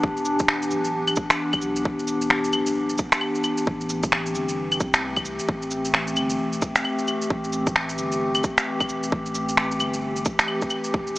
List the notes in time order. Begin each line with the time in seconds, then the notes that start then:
Already playing: E3 B3 D4 G4
0.03 E1, kick
0.17 shaker
0.25 cabasa
0.39 kick, shaker
0.48 finger snap
0.62 shaker
0.71 D1, cabasa
0.85 shaker
1.08 claves, shaker
1.16 kick, cabasa
1.30 finger snap, shaker
1.53 kick, claves, shaker
1.62 B1, cabasa
1.76 shaker
1.85 E1, kick
1.99 shaker
2.08 cabasa
2.21 shaker
2.30 finger snap
2.44 shaker
2.53 D1, cabasa, claves
2.66 shaker
2.89 shaker
2.98 kick, cabasa
3.12 finger snap, shaker
3.21 claves
3.35 shaker
3.44 cabasa, claves
3.58 shaker
3.67 A1 E3 A3 C4 G4, kick
3.81 shaker
3.90 cabasa
4.03 kick, shaker
4.12 finger snap
4.26 shaker
4.35 G1, cabasa
4.49 shaker
4.72 claves, shaker
4.80 C2, kick, cabasa
4.94 finger snap, shaker
5.16 kick, claves, shaker
5.26 cabasa
5.39 shaker
5.49 A1, kick
5.62 shaker
5.71 cabasa
5.85 shaker
5.94 finger snap
6.07 shaker
6.16 G1, cabasa, claves
6.30 shaker
6.39 E1
6.53 shaker
6.62 kick, cabasa
6.76 finger snap, shaker
6.85 claves
6.99 shaker
7.08 cabasa, claves
7.22 shaker
7.30 A1, kick
7.44 shaker
7.53 cabasa
7.67 kick, shaker
7.76 finger snap
7.89 shaker
7.98 G1, cabasa
8.12 shaker
8.35 claves, shaker
8.44 kick, cabasa
8.58 finger snap, shaker
8.80 kick, claves, shaker
8.89 E1, cabasa
9.03 shaker
9.12 A1, kick
9.26 shaker
9.35 cabasa
9.49 shaker
9.57 finger snap
9.71 shaker
9.80 G1, cabasa, claves
9.94 shaker
10.16 shaker
10.25 kick, cabasa
10.39 finger snap, shaker
10.48 claves
10.62 kick, shaker
10.70 cabasa, claves
10.84 shaker
10.94 E1 B3 D4, kick
11.07 shaker